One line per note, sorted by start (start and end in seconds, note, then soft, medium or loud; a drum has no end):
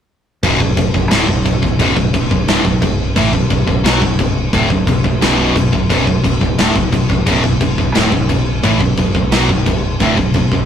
0.43 0.59 B0 medium
0.43 0.59 B1 loud
0.43 0.59 F#2 loud
0.43 kick loud
0.43 crash medium
0.60 0.76 B0 medium
0.60 0.76 B1 medium
0.60 0.76 F#2 medium
0.60 kick medium
0.77 0.93 B0 medium
0.77 0.93 B1 medium
0.77 0.93 F#2 medium
0.77 kick loud
0.77 crash medium
0.94 1.10 B0 medium
0.94 1.10 B1 medium
0.94 1.11 F#2 medium
0.94 kick loud
1.11 1.27 D1 loud
1.11 1.27 D2 loud
1.11 1.28 A2 loud
1.11 snare loud
1.11 crash medium
1.28 1.45 B0 medium
1.28 1.44 B1 medium
1.28 1.44 F#2 medium
1.28 kick medium
1.45 1.62 B0 medium
1.45 1.61 B1 medium
1.45 1.61 F#2 medium
1.45 kick medium
1.45 crash medium
1.62 1.79 B0 medium
1.62 1.78 B1 medium
1.62 1.79 F#2 medium
1.62 kick medium
1.79 1.96 B0 loud
1.79 1.96 B1 medium
1.79 1.96 F#2 loud
1.79 kick medium
1.79 crash medium
1.97 2.13 B0 medium
1.97 2.13 B1 medium
1.97 2.13 F#2 medium
1.97 kick loud
2.14 2.30 B0 medium
2.14 2.30 B1 medium
2.14 2.30 F#2 medium
2.14 kick loud
2.14 crash medium
2.31 2.47 B0 medium
2.31 2.48 B1 medium
2.31 2.48 F#2 medium
2.31 kick medium
2.48 2.64 D1 loud
2.48 2.64 D2 medium
2.48 2.64 A2 loud
2.48 snare loud
2.48 crash medium
2.65 2.81 B0 medium
2.65 2.81 B1 medium
2.65 2.82 F#2 medium
2.65 kick medium
2.82 3.14 B0 medium
2.82 3.10 B1 medium
2.82 3.10 F#2 medium
2.82 kick medium
2.82 crash medium
3.16 3.32 A1 medium
3.16 3.32 A2 loud
3.16 3.33 E3 loud
3.16 kick loud
3.16 crash medium
3.33 3.49 B0 medium
3.33 3.49 B1 medium
3.33 3.49 F#2 medium
3.33 kick medium
3.50 3.66 B0 medium
3.50 3.66 B1 medium
3.50 3.66 F#2 medium
3.50 kick medium
3.50 crash medium
3.67 3.83 B0 medium
3.67 3.84 B1 medium
3.67 3.84 F#2 medium
3.67 kick medium
3.84 4.00 B1 medium
3.84 4.01 B2 medium
3.84 4.01 F#3 loud
3.84 snare loud
3.84 crash medium
4.01 4.18 B0 medium
4.01 4.18 B1 medium
4.01 4.18 F#2 medium
4.01 kick medium
4.19 4.51 B0 loud
4.19 4.46 B1 medium
4.19 4.46 F#2 medium
4.19 kick medium
4.19 crash medium
4.53 4.69 D1 loud
4.53 4.69 D2 medium
4.53 4.70 A2 medium
4.53 kick loud
4.53 crash medium
4.70 4.86 B0 medium
4.70 4.86 B1 medium
4.70 4.87 F#2 medium
4.70 kick medium
4.87 5.03 B0 medium
4.87 5.03 B1 medium
4.87 5.03 F#2 medium
4.87 kick loud
4.87 crash medium
5.04 5.20 B0 medium
5.04 5.20 B1 medium
5.04 5.21 F#2 medium
5.04 kick medium
5.21 5.53 B0 medium
5.21 5.54 B1 medium
5.21 5.55 F#2 medium
5.21 5.55 B2 loud
5.21 snare loud
5.21 crash medium
5.55 5.72 B0 medium
5.55 5.71 B1 medium
5.55 5.72 F#2 medium
5.55 kick loud
5.55 crash medium
5.72 5.89 B0 medium
5.72 5.88 B1 medium
5.72 5.89 F#2 medium
5.72 kick medium
5.89 6.06 B0 medium
5.89 6.05 B1 loud
5.89 6.05 F#2 loud
5.89 kick loud
5.89 crash medium
6.07 6.23 B0 medium
6.07 6.22 B1 medium
6.07 6.23 F#2 medium
6.07 kick medium
6.24 6.40 B0 medium
6.24 6.40 B1 medium
6.24 6.40 F#2 medium
6.24 kick medium
6.24 crash medium
6.41 6.57 B0 medium
6.41 6.58 B1 medium
6.41 6.58 F#2 medium
6.41 kick medium
6.58 6.75 D1 loud
6.58 6.74 D2 medium
6.58 6.75 A2 loud
6.58 snare loud
6.58 crash medium
6.75 6.91 B0 medium
6.75 6.91 B1 medium
6.75 6.91 F#2 medium
6.75 kick loud
6.92 7.09 B0 medium
6.92 7.08 B1 medium
6.92 7.09 F#2 medium
6.92 kick medium
6.92 crash medium
7.09 7.25 B0 medium
7.09 7.25 B1 medium
7.09 7.26 F#2 medium
7.09 kick loud
7.26 7.43 B0 loud
7.26 7.43 B1 medium
7.26 7.43 F#2 loud
7.26 kick loud
7.26 crash medium
7.44 7.60 B0 medium
7.44 7.59 B1 medium
7.44 7.60 F#2 medium
7.44 kick loud
7.61 7.77 B0 medium
7.61 7.77 B1 medium
7.61 7.78 F#2 medium
7.61 kick loud
7.61 crash medium
7.78 7.94 B0 medium
7.78 7.94 B1 medium
7.78 7.95 F#2 medium
7.78 kick medium
7.95 8.11 D1 loud
7.95 8.11 D2 loud
7.95 8.12 A2 medium
7.95 snare loud
7.95 crash medium
8.12 8.28 B0 medium
8.12 8.28 B1 medium
8.12 8.29 F#2 medium
8.12 kick loud
8.29 8.61 B0 medium
8.29 8.57 B1 medium
8.29 8.57 F#2 medium
8.29 kick medium
8.29 crash medium
8.63 8.80 A1 medium
8.63 8.80 A2 loud
8.63 8.80 E3 loud
8.63 kick loud
8.63 crash medium
8.80 8.97 B0 medium
8.80 8.97 B1 medium
8.80 8.97 F#2 medium
8.80 kick medium
8.97 9.14 B0 medium
8.97 9.14 B1 medium
8.97 9.15 F#2 medium
8.97 kick medium
8.97 crash medium
9.15 9.31 B0 medium
9.15 9.32 B1 medium
9.15 9.33 F#2 medium
9.15 kick medium
9.32 9.48 B1 medium
9.32 9.49 B2 loud
9.32 9.49 F#3 loud
9.32 snare loud
9.32 crash medium
9.49 9.65 B0 medium
9.49 9.66 B1 medium
9.49 9.67 F#2 medium
9.49 kick medium
9.66 9.98 B0 medium
9.66 9.94 B1 medium
9.66 9.95 F#2 medium
9.66 kick medium
9.66 crash medium
10.00 10.17 D1 loud
10.00 10.17 D2 medium
10.00 10.17 A2 loud
10.00 kick loud
10.00 crash medium
10.17 10.33 B0 medium
10.17 10.34 B1 medium
10.17 10.35 F#2 medium
10.17 kick medium
10.34 10.51 B0 medium
10.34 10.51 B1 medium
10.34 10.52 F#2 medium
10.34 kick medium
10.34 crash medium
10.52 10.65 B0 medium
10.52 10.65 B1 medium
10.52 10.65 F#2 medium
10.52 kick medium